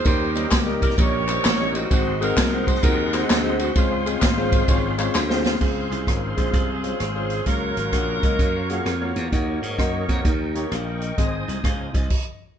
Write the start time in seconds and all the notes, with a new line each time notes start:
Already playing: A#4
0.05 D#2 D#3 G3 A#3 C#4 D#4 G4 A#4 C5 D#5 G5, kick, ride, tambourine
0.35 G3 A#3 C#4 D#4 A#4, ride, tambourine
0.51 C#2, kick, snare, clap, ride, tambourine
0.66 G3 A#3 C#4 D#4 A#4
0.82 C2 A#4, kick, ride, tambourine
0.90 snare
0.98 A#1 G3 A#3 C#4 D#4 G4 A#4 C#5, kick, ride, tambourine
1.28 G3 A#3 C#4 D#4 C5, clap, ride, tambourine
1.45 A1, snare, clap, ride, tambourine
1.59 G3 A#3 C#4 D#4 C#5
1.75 C4 D#4 F#4, ride, tambourine
1.90 G#1 G#2 G#3 C4 D#4 F#4 G#4 C5 D#5 F#5 C6, kick, ride, tambourine
2.20 G#3 C4 D#4 F#4 G#4 A#4, ride, tambourine
2.37 C2, kick, snare, clap, ride, tambourine
2.51 G#3 C4 D#4 F#4 C5
2.67 C5, kick, ride, tambourine
2.75 snare
2.82 D#2 G#3 C4 D#4 F#4 A#4, kick, ride, tambourine
3.13 G#3 C4 D#4 F#4 C5, snare, clap, ride, tambourine
3.22 C4 D#4 G#4
3.30 D2, snare, clap, ride, tambourine
3.44 G#3 C4 D#4 F#4 C5
3.59 F#4, ride, tambourine
3.75 C#2 C#3 G#3 C4 C#4 F4 C5 F5, kick, ride, tambourine
4.06 G#3 C4 C#4 F4 G#4, ride, tambourine
4.22 G#1, kick, snare, clap, ride, tambourine
4.38 G#3 C4 C#4 F4 C5
4.52 kick, ride, tambourine
4.68 G#1 G#3 C4 C#4 F4 C#5, kick, ride, tambourine
4.98 G#3 C4 C#4 F4 C#5, clap, ride, tambourine
5.15 D2, snare, clap, tambourine
5.29 G#3 C4 C#4 F4 C5, snare
5.45 snare, tambourine
5.60 C#2 C#3 G#3 C4 F4 G#4 C5 F5 C6, kick, crash
5.91 C2, closed hi-hat
6.06 G#1 G#3 C#4 F4 A#4, kick, cross-stick, closed hi-hat
6.37 A#1 C#3 G#3 F4 C5, kick, closed hi-hat
6.45 cross-stick
6.53 C2, kick, closed hi-hat
6.83 G#3 C#4 F4 C5, closed hi-hat
7.00 G#1, cross-stick, closed hi-hat
7.15 G#3 C#4 F4 C5
7.30 closed hi-hat
7.46 C#2 C#3 F#3 A#3 F4 F#4 A#4 C#5 F5 C#6, kick, closed hi-hat
7.77 G#1, closed hi-hat
7.92 A#1 A#3 F4 F#4 C#5, kick, cross-stick, closed hi-hat
8.23 C#2 F#3 A#3 D#5 F5, kick, closed hi-hat
8.39 F#2, kick, closed hi-hat
8.70 A#3 F4 F#4 G#4, cross-stick, closed hi-hat
8.85 F2, cross-stick, closed hi-hat
9.01 A#3 F4 F#4 C#5
9.16 E2, closed hi-hat
9.32 D#2 D#3 A#3 D#4 F#4 A#4 C#5 D#5, kick, closed hi-hat
9.62 G#2, closed hi-hat
9.78 F#2 A#3 D#4 F#4 D#5, kick, cross-stick, closed hi-hat
10.08 F2 A#3 D#4 F#4 C#5, kick, closed hi-hat
10.24 D#2 D#3 G5 C#6, kick, closed hi-hat
10.55 A#3 D#4 G4 C#5, closed hi-hat
10.71 A#1 F5, cross-stick, closed hi-hat
11.02 D#5, closed hi-hat
11.17 G#1 G#2 C4 D#4 G#4 C5 D#5 G#5 D#6, kick, closed hi-hat
11.48 C2, closed hi-hat
11.64 C#2 F5, kick, cross-stick, closed hi-hat
11.94 C2 D#5, kick, closed hi-hat
12.02 cross-stick
12.10 kick, crash